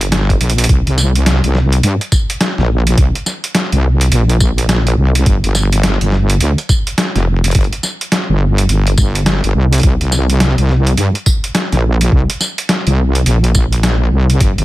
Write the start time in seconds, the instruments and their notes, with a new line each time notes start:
Already playing: wobble bass G1
0.01 closed hi-hat
0.12 snare, closed hi-hat
0.30 kick, closed hi-hat
0.41 wobble bass A#1, closed hi-hat
0.50 closed hi-hat
0.58 closed hi-hat
0.64 closed hi-hat
0.69 wobble bass C2, kick, closed hi-hat
0.87 wobble bass C2, closed hi-hat
0.98 snare, tambourine
1.15 closed hi-hat
1.26 snare, closed hi-hat
1.44 wobble bass C2, closed hi-hat
1.55 snare
1.73 closed hi-hat
1.83 wobble bass G2, closed hi-hat
2.01 closed hi-hat
2.12 kick, tambourine
2.30 closed hi-hat
2.41 snare, closed hi-hat
2.58 wobble bass A#1, snare
2.87 closed hi-hat
2.98 wobble bass C2, kick, closed hi-hat
3.15 closed hi-hat
3.26 snare, tambourine
3.44 closed hi-hat
3.55 snare, closed hi-hat
3.72 wobble bass C2, closed hi-hat
4.01 closed hi-hat
4.12 wobble bass A#1, closed hi-hat
4.29 closed hi-hat
4.40 kick, tambourine
4.58 closed hi-hat
4.69 snare, closed hi-hat
4.87 closed hi-hat
4.97 wobble bass C2
5.15 closed hi-hat
5.26 wobble bass G1, kick, closed hi-hat
5.44 wobble bass G1, closed hi-hat
5.55 snare, tambourine
5.72 closed hi-hat
5.83 snare, closed hi-hat
6.01 wobble bass G1, closed hi-hat
6.12 snare
6.30 closed hi-hat
6.41 wobble bass D2, closed hi-hat
6.58 closed hi-hat
6.69 kick, tambourine
6.87 closed hi-hat
6.98 snare, closed hi-hat
7.16 wobble bass F1, snare, closed hi-hat
7.44 closed hi-hat
7.51 closed hi-hat
7.55 wobble bass G1, kick, closed hi-hat
7.61 closed hi-hat
7.64 closed hi-hat
7.73 closed hi-hat
7.83 snare, tambourine
8.01 closed hi-hat
8.12 snare, closed hi-hat
8.30 wobble bass G1
8.58 closed hi-hat
8.69 wobble bass G1, closed hi-hat
8.87 closed hi-hat
8.98 wobble bass G1, kick, tambourine
9.15 closed hi-hat
9.26 snare, closed hi-hat
9.44 wobble bass G1, closed hi-hat
9.55 wobble bass C2
9.73 closed hi-hat
9.74 closed hi-hat
9.78 closed hi-hat
9.80 closed hi-hat
9.81 closed hi-hat
9.83 wobble bass C2, kick, closed hi-hat
10.01 wobble bass C2, closed hi-hat
10.12 snare, tambourine
10.30 closed hi-hat
10.40 snare, closed hi-hat
10.58 wobble bass C2, closed hi-hat
10.69 snare
10.87 closed hi-hat
10.97 wobble bass G2, closed hi-hat
11.15 closed hi-hat
11.26 kick, tambourine
11.44 closed hi-hat
11.55 snare, closed hi-hat
11.72 wobble bass A#1, snare, closed hi-hat
12.01 closed hi-hat
12.12 wobble bass C2, kick
12.30 closed hi-hat
12.41 snare, tambourine
12.58 closed hi-hat
12.69 snare, closed hi-hat
12.87 wobble bass C2, closed hi-hat
13.15 closed hi-hat
13.26 wobble bass A#1, closed hi-hat
13.44 closed hi-hat
13.55 kick, tambourine
13.72 closed hi-hat
13.83 snare, closed hi-hat
14.12 wobble bass C2
14.30 closed hi-hat
14.40 wobble bass G1, kick, closed hi-hat
14.58 wobble bass G1, closed hi-hat